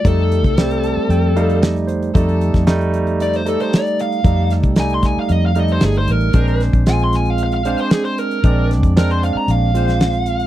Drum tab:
HH |x-xxxxx-x-xxxxxx|xxxxxxxxxxxxxxxx|x-xxxxx-x-xxxxxx|xxxxxxxxxxxxxxxx|
SD |----o-------o---|---oo-------o---|--o-o-o-----o---|--o-o-o-----o---|
BD |o--o------------|o--o------------|o--o--o---------|o--o------------|

HH |x-xxxxx-x-xxxxxx|
SD |--o-o------oo---|
BD |o--o------------|